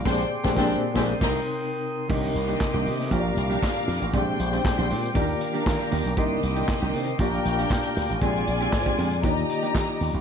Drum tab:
CC |x--------x------|x---------------|----------------|----------------|
HH |----------------|-xxx-xoxx-xx--ox|x-xx-xoxxxxx-xox|x-xx-xoxxxxx-xox|
CP |----------------|----x-------x---|----x-------x---|----x-------x---|
SD |o--oo--o-o------|----o--o----o---|----o-------o---|----o-------o---|
BD |o--oo--o-o------|o---o---o---o---|o---o---o---o---|o---o---o---o---|

CC |----------------|
HH |xxxx-xoxxxxx--ox|
CP |----x-------x---|
SD |----o-------o---|
BD |o---oo--o---o---|